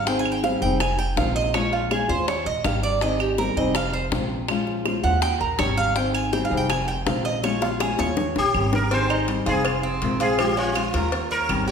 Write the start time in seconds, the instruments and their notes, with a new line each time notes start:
Already playing: upright bass G#1
0.06 nylon-string guitar D#3 C4 D#4 G#4, cuban tres G5, high bongo
0.19 cuban tres G#5
0.26 claves
0.32 cuban tres G5
0.43 nylon-string guitar G3 C4 D#4 G#4, cuban tres F5, high bongo
0.62 upright bass F1, nylon-string guitar G3 C4 D#4 G#4, cuban tres G5
0.80 cuban tres G#5, muted nylon-string guitar stroke, high bongo, claves
0.99 cuban tres G5
1.16 upright bass A#1, nylon-string guitar D#3 G#3 C4 F4, cuban tres F5, high bongo, low bongo
1.36 cuban tres D#5
1.53 nylon-string guitar F3 G#3 C#4 F4, cuban tres C#5, high bongo, claves
1.73 cuban tres F4, high bongo
1.90 nylon-string guitar F3 G#3 C#4 F4, cuban tres G#4, high bongo, claves
2.09 upright bass D#2, nylon-string guitar G#3 C#4 F4, cuban tres C5, high bongo
2.27 cuban tres C#5, muted nylon-string guitar stroke, high bongo
2.46 upright bass A#1, cuban tres D#5, high bongo
2.64 upright bass G#1, nylon-string guitar D#3 G3 C#4 G4, cuban tres F5, high bongo, low bongo, claves
2.83 cuban tres D5
3.01 nylon-string guitar D#3 C4 D#4 G#4, cuban tres D#5, high bongo
3.20 cuban tres G4, claves
3.38 nylon-string guitar G3 C4 D#4 G#4, cuban tres A#4, high bongo
3.56 upright bass F1, nylon-string guitar G3 C4 D#4 G#4, cuban tres D#5
3.75 cuban tres F5, muted nylon-string guitar stroke, high bongo, claves
3.93 cuban tres C5
4.12 upright bass A#1, nylon-string guitar D#3 G#3 C4 F4, high bongo, low bongo
4.48 nylon-string guitar F3 G#3 C#4 F4, high bongo, claves
4.67 high bongo
4.85 nylon-string guitar F3 G#3 C#4 F4, high bongo, claves
5.04 upright bass D#2, nylon-string guitar G#3 C#4 F4, cuban tres F#5, high bongo
5.22 cuban tres G5, muted nylon-string guitar stroke, high bongo
5.41 upright bass A#1, cuban tres A#4, high bongo
5.59 upright bass G#1, nylon-string guitar D#3 G3 C#4 G4, cuban tres C#5, high bongo, low bongo, claves
5.78 cuban tres F5
5.96 nylon-string guitar D#3 C4 D#4 G#4, cuban tres G5, high bongo
6.14 cuban tres G#5, claves
6.32 nylon-string guitar G3 C4 D#4 G#4, cuban tres G5, high bongo
6.45 cuban tres F5
6.51 upright bass F1, nylon-string guitar G3 C4 D#4 G#4
6.57 cuban tres G5
6.69 cuban tres G#5, muted nylon-string guitar stroke, high bongo, claves
6.88 cuban tres G5
7.06 upright bass A#1, nylon-string guitar D#3 G#3 C4 F4, cuban tres F5, high bongo, low bongo
7.25 cuban tres D#5
7.43 nylon-string guitar F3 G#3 C#4 F4, cuban tres C#5, high bongo, claves
7.62 cuban tres F4, high bongo
7.80 nylon-string guitar F3 G#3 C#4 F4, cuban tres G#4, high bongo, claves
7.98 upright bass D#2, nylon-string guitar G#3 C#4 F4, cuban tres C#5, high bongo
8.17 muted nylon-string guitar stroke, low bongo
8.36 upright bass A#1, sitar G4, low bongo
8.54 upright bass G#1, nylon-string guitar D#3 G3 C#4 G4, claves
8.73 sitar A#4, low bongo
8.91 nylon-string guitar D#3 C4 D#4 G#4, cuban tres C4, sitar C5, cowbell
9.10 cuban tres D#4, claves
9.28 nylon-string guitar G3 C4 D#4 G#4, cowbell
9.46 upright bass F1, nylon-string guitar G3 C4 D#4 G#4, cuban tres F4, sitar G#4, cowbell
9.65 muted nylon-string guitar stroke, cowbell, claves
9.83 cuban tres C4
10.02 upright bass A#1, nylon-string guitar C3 D#3 G#3 C4 F4, cowbell
10.20 nylon-string guitar G#3 C4 F4, cuban tres F4, sitar G#4, cowbell
10.38 nylon-string guitar F3 G#3 C#4 F4, sitar G4, cowbell, claves
10.57 cuban tres C#4, sitar F4
10.75 nylon-string guitar F3 G#3 C#4 F4, cuban tres F4, cowbell, claves
10.93 upright bass D#2, nylon-string guitar G#3 C#4 F4, cuban tres A#4, cowbell
11.12 muted nylon-string guitar stroke, cowbell
11.31 sitar A#4, cuban tres C#5
11.49 upright bass G#1, nylon-string guitar D#3 G3 C#4 G4, cowbell, claves
11.67 nylon-string guitar G4, cuban tres G4